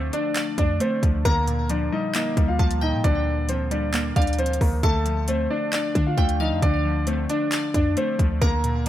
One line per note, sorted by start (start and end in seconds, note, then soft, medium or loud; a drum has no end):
0.00 0.11 D2 loud
0.00 0.58 D3 loud
0.00 1.03 F3 medium
0.00 0.80 A3 loud
0.00 0.11 C4 medium
0.00 0.13 D4 medium
0.00 0.10 C5 medium
0.00 0.36 D5 loud
0.13 0.57 D4 medium
0.13 0.56 D4 medium
0.13 0.55 D5 medium
0.13 closed hi-hat medium
0.36 1.25 D5 loud
0.36 clap loud
0.36 closed hi-hat medium
0.58 0.79 F2 loud
0.58 1.25 D4 medium
0.58 0.78 D4 medium
0.58 0.78 D5 medium
0.58 kick loud
0.58 closed hi-hat medium
0.80 1.25 A3 medium
0.80 1.01 C4 medium
0.80 1.00 C5 medium
0.80 closed hi-hat medium
1.03 1.24 D2 loud
1.03 1.25 F3 medium
1.03 kick medium
1.03 closed hi-hat medium
1.25 1.90 D2 loud
1.25 2.37 D3 loud
1.25 1.68 A#3 medium
1.25 1.67 A#4 loud
1.25 2.56 A#5 loud
1.25 kick loud
1.25 closed hi-hat medium
1.48 2.59 A#2 medium
1.48 closed hi-hat medium
1.70 2.58 F3 loud
1.70 1.90 D4 medium
1.70 1.89 D5 medium
1.70 closed hi-hat medium
1.92 2.36 G3 medium
1.92 2.12 D#4 medium
1.92 2.12 D#5 medium
2.15 3.27 A#3 loud
2.15 2.47 D#4 medium
2.15 2.46 D#5 medium
2.15 clap loud
2.15 closed hi-hat medium
2.37 2.59 D2 loud
2.37 3.49 G3 medium
2.37 kick loud
2.37 closed hi-hat medium
2.48 2.80 F4 medium
2.48 2.80 F5 medium
2.59 2.95 D2 loud
2.59 3.48 F3 loud
2.59 2.81 A5 medium
2.59 kick loud
2.59 closed hi-hat soft
2.71 closed hi-hat medium
2.81 3.94 A#2 medium
2.81 3.02 D#4 medium
2.81 3.02 D#5 medium
2.81 3.03 G5 medium
2.93 3.04 A2 loud
3.04 4.12 D2 loud
3.04 4.16 D3 loud
3.04 3.47 D4 medium
3.04 3.46 D5 loud
3.04 kick loud
3.04 closed hi-hat medium
3.49 4.37 F3 medium
3.49 3.69 C4 medium
3.49 3.69 C5 medium
3.49 closed hi-hat medium
3.71 4.15 G3 medium
3.71 4.14 D4 medium
3.71 4.13 D5 medium
3.71 closed hi-hat medium
3.94 4.83 A#3 loud
3.94 clap loud
3.94 closed hi-hat medium
4.16 4.59 D2 loud
4.16 4.83 G3 medium
4.16 4.36 D4 medium
4.16 4.36 D5 medium
4.16 4.37 F5 medium
4.16 kick loud
4.16 closed hi-hat medium
4.22 closed hi-hat medium
4.27 closed hi-hat medium
4.33 closed hi-hat medium
4.39 4.83 F3 medium
4.39 4.59 C4 medium
4.39 4.58 C5 medium
4.39 closed hi-hat medium
4.46 closed hi-hat medium
4.53 closed hi-hat medium
4.61 4.82 D2 loud
4.61 4.83 D#3 medium
4.61 4.81 A#3 medium
4.61 4.80 A#4 medium
4.61 kick medium
4.61 open hi-hat medium
4.83 5.48 D2 loud
4.83 5.95 D3 loud
4.83 5.26 A3 medium
4.83 5.25 A4 loud
4.83 6.14 A5 loud
4.83 kick loud
4.83 closed hi-hat medium
5.06 6.18 F3 medium
5.06 closed hi-hat medium
5.28 6.17 A3 loud
5.28 5.48 C4 medium
5.28 5.48 C5 medium
5.28 closed hi-hat medium
5.50 5.94 D4 medium
5.50 5.70 D4 medium
5.50 5.70 D5 medium
5.73 6.05 D4 medium
5.73 6.04 D5 medium
5.73 6.85 D5 loud
5.73 clap loud
5.73 closed hi-hat medium
5.95 6.17 D3 loud
5.95 7.07 D4 medium
5.95 kick loud
5.95 closed hi-hat medium
6.07 6.39 F4 medium
6.07 6.38 F5 medium
6.17 6.53 D2 loud
6.17 7.06 A3 medium
6.17 6.39 G5 medium
6.17 kick loud
6.17 closed hi-hat soft
6.29 closed hi-hat medium
6.40 6.84 F3 medium
6.40 6.60 D#4 medium
6.40 6.60 D#5 medium
6.40 6.61 F5 loud
6.51 6.62 F2 loud
6.62 7.27 D2 loud
6.62 7.74 D3 loud
6.62 7.05 D4 medium
6.62 7.05 D5 loud
6.62 kick loud
6.62 closed hi-hat medium
6.85 7.97 F3 medium
7.07 7.96 A3 medium
7.07 7.27 C4 medium
7.07 7.27 C5 medium
7.07 closed hi-hat medium
7.30 7.73 D4 medium
7.30 7.72 D4 medium
7.30 7.72 D5 medium
7.30 closed hi-hat medium
7.52 8.42 D5 loud
7.52 clap loud
7.52 closed hi-hat medium
7.74 7.96 F2 loud
7.74 8.42 D4 medium
7.74 7.95 D4 medium
7.74 7.94 D5 medium
7.74 kick loud
7.74 closed hi-hat medium
7.97 8.42 A3 medium
7.97 8.17 C4 medium
7.97 8.17 C5 medium
7.97 closed hi-hat medium
8.19 8.41 D2 loud
8.19 8.42 F3 medium
8.19 kick medium
8.19 closed hi-hat medium
8.41 8.89 D2 loud
8.41 8.89 D3 loud
8.41 8.84 A#3 medium
8.41 8.84 A#4 loud
8.41 8.89 A#5 loud
8.41 kick loud
8.41 closed hi-hat medium
8.64 8.89 A#2 medium
8.64 closed hi-hat medium